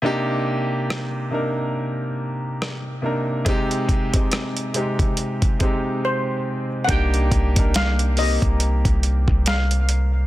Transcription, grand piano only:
X:1
M:4/4
L:1/16
Q:"Swing 16ths" 1/4=70
K:Cm
V:1 name="Grand piano"
[C,B,DEG]4- [C,B,DEG] z [C,B,DEB]6 z2 [C,B,DEB]2 | [C,A,CEG]2 z [C,A,CEG]2 z [C,A,CEG]3 z [C,A,CEG]4- [C,A,CEG] z | [B,DEG]2 z [B,DEB]2 z [B,CEG]6 z4 |]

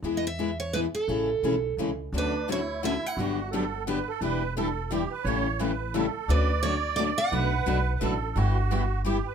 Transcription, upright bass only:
X:1
M:3/4
L:1/8
Q:"Swing" 1/4=173
K:A
V:1 name="Upright bass" clef=bass
E,,6 | A,,,2 B,,,2 C,,2 | [K:D] D,,6 | G,,,6 |
E,,,6 | A,,,6 | D,,6 | B,,,2 B,,,2 A,,,2 |
G,,,6 |]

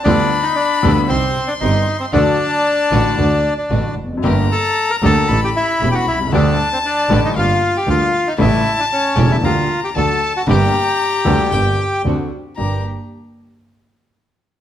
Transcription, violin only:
X:1
M:4/4
L:1/8
Q:1/4=115
K:Gm
V:1 name="Violin"
=b4 c'4 | a6- a z | b4 =b4 | a4 f4 |
a4 b2 a2 | b4 g2 z2 | b z6 z |]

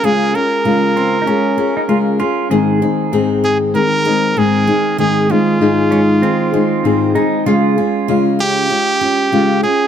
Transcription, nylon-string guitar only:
X:1
M:4/4
L:1/8
Q:"Swing 16ths" 1/4=97
K:Ab
V:1 name="Nylon-string guitar"
[D,A,DFA] [DFA] [D,A,DFA]2 [A,DFA] [DFA] [D,A,DFA] [DFA] | [A,,E,A,CEA] [A,CEA] [A,,E,A,CEA]2 [A,CEA] [A,CEA] [A,,E,A,CEA] [A,CEA] | [A,,E,A,CEA] [A,CEA] [A,,E,A,EA]2 [A,CEA] [A,CEA] [A,,E,A,CEA] [A,CEA] | [D,A,DFA] [DFA] [D,A,DF]2 [A,DF] [DF] [D,A,DF] [DFA] |]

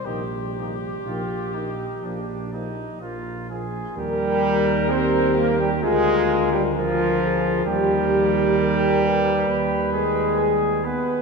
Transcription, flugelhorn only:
X:1
M:4/4
L:1/16
Q:1/4=65
K:Eb
V:1 name="Flugelhorn"
E2 E2 F2 E2 D2 E2 F2 A2 | G4 c2 B G A3 G F4 | G8- G2 A4 _c2 |]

